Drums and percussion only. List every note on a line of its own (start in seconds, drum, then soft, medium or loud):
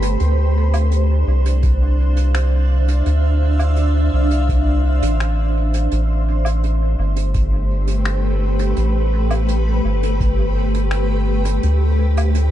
0.02 closed hi-hat medium
0.20 closed hi-hat medium
0.74 closed hi-hat medium
0.74 low woodblock medium
0.91 closed hi-hat medium
1.46 closed hi-hat medium
1.63 kick loud
1.63 closed hi-hat medium
2.16 closed hi-hat medium
2.34 finger snap loud
2.34 closed hi-hat medium
2.88 closed hi-hat medium
3.06 closed hi-hat medium
3.59 closed hi-hat medium
3.59 low woodblock medium
3.76 closed hi-hat medium
4.31 closed hi-hat medium
4.49 kick loud
4.49 closed hi-hat medium
5.02 closed hi-hat medium
5.20 finger snap medium
5.20 closed hi-hat medium
5.74 closed hi-hat medium
5.91 closed hi-hat medium
6.45 closed hi-hat medium
6.45 low woodblock medium
6.64 closed hi-hat medium
7.16 closed hi-hat medium
7.34 kick loud
7.34 closed hi-hat medium
7.87 closed hi-hat medium
8.05 finger snap loud
8.05 closed hi-hat medium
8.59 closed hi-hat medium
8.76 closed hi-hat medium
9.31 closed hi-hat medium
9.31 low woodblock medium
9.48 closed hi-hat medium
10.03 closed hi-hat medium
10.20 kick loud
10.20 closed hi-hat medium
10.74 closed hi-hat medium
10.91 finger snap medium
10.91 closed hi-hat medium
11.45 closed hi-hat medium
11.63 closed hi-hat medium
12.17 closed hi-hat medium
12.17 low woodblock medium
12.35 closed hi-hat medium